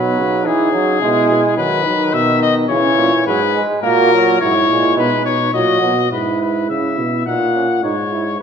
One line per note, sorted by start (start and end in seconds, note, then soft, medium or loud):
0.00 0.20 B2 medium
0.00 0.47 F#3 medium
0.00 1.00 D#4 medium
0.00 0.48 B4 medium
0.18 1.02 C#3 medium
0.45 0.71 E3 medium
0.45 1.57 G#4 medium
0.72 1.01 F#3 medium
1.01 1.29 B2 medium
1.01 1.57 G#3 medium
1.01 1.56 E4 medium
1.30 1.42 B2 medium
1.57 1.85 D#3 medium
1.57 1.88 F#3 medium
1.57 2.67 D#4 medium
1.57 2.15 B4 medium
1.86 2.69 D#3 medium
1.86 2.13 F#3 medium
2.13 2.69 B2 medium
2.13 2.42 E5 medium
2.42 2.55 D#5 medium
2.70 2.83 C#3 medium
2.70 3.25 E3 medium
2.70 3.10 C#4 medium
2.70 3.25 C#5 medium
2.98 3.11 A#2 medium
3.26 3.63 G#2 medium
3.26 3.40 F#3 medium
3.26 3.63 G#4 medium
3.26 3.63 B4 medium
3.55 3.82 G#3 medium
3.83 4.37 A#2 medium
3.83 4.11 A#3 medium
3.83 4.37 F#4 medium
3.83 4.37 A#4 loud
4.13 4.40 F#3 medium
4.40 4.68 G#2 medium
4.40 4.54 F#3 medium
4.40 4.99 E4 medium
4.40 4.96 C#5 medium
4.68 4.96 A#2 medium
4.68 5.25 G#3 medium
4.97 5.09 B2 medium
4.97 5.53 D#4 medium
4.97 5.25 B4 medium
5.25 5.52 B2 medium
5.25 5.54 C#5 medium
5.53 5.81 A#2 medium
5.53 5.80 F#3 medium
5.53 6.10 F#4 medium
5.53 6.10 D#5 medium
5.81 6.10 B2 medium
5.81 5.94 F#3 medium
6.11 6.71 G#2 medium
6.11 7.22 E4 medium
6.11 6.39 B4 medium
6.41 6.69 B4 medium
6.69 6.99 C#3 medium
6.69 7.25 E5 medium
6.98 7.26 B2 medium
7.26 7.85 A#2 medium
7.26 7.39 D#4 medium
7.26 7.82 F#5 medium
7.54 7.67 C#4 medium
7.83 8.40 G#2 medium
7.83 7.96 D#4 medium
7.83 8.40 C#5 medium
8.11 8.24 E4 medium